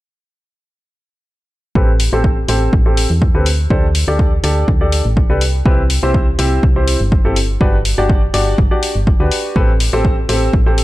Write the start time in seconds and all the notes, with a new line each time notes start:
1.75 A1 C4 G4 A4 B4, kick
2.00 open hi-hat
2.13 A1 C4 G4 A4 C5
2.24 kick
2.48 A1 C4 G4 A4 C5, open hi-hat
2.73 A1, kick
2.86 C4 G4 A4 C5
2.97 open hi-hat
3.10 E2
3.22 kick
3.34 D2 C4 G4 A4 B4
3.46 open hi-hat
3.70 D2 D4 G4 A4 C5, kick
3.95 open hi-hat
4.08 D2 D4 G4 A4 D5
4.19 kick
4.44 D2 D4 G4 A4 D5, open hi-hat
4.68 D2, kick
4.81 D4 G4 A4 D5
4.92 open hi-hat
5.05 A1
5.17 kick
5.30 C2 D4 G4 A4 B4
5.41 open hi-hat
5.66 C2 C4 E4 G4 B4, kick
5.90 open hi-hat
6.03 C2 C4 E4 G4 C5
6.14 kick
6.39 C2 C4 E4 G4 C5, open hi-hat
6.63 C2, kick
6.76 C4 E4 G4 C5
6.88 open hi-hat
7.00 G1
7.12 kick
7.25 G1 C4 E4 G4 A4
7.36 open hi-hat
7.61 G1 D4 F#4 G4 B4, kick
7.85 open hi-hat
7.98 G1 D4 F#4 G4 D5
8.09 kick
8.34 G1 D4 F#4 G4 D5, open hi-hat
8.58 G1, kick
8.71 D4 F#4 G4 D5
8.83 open hi-hat
8.96 G1
9.07 kick
9.20 D2 D4 F#4 G4 B4
9.31 open hi-hat
9.56 A1 C4 G4 A4 B4, kick
9.80 open hi-hat
9.93 A1 C4 G4 A4 C5
10.05 kick
10.29 A1 C4 G4 A4 C5, open hi-hat
10.53 A1, kick
10.66 C4 G4 A4 C5
10.78 open hi-hat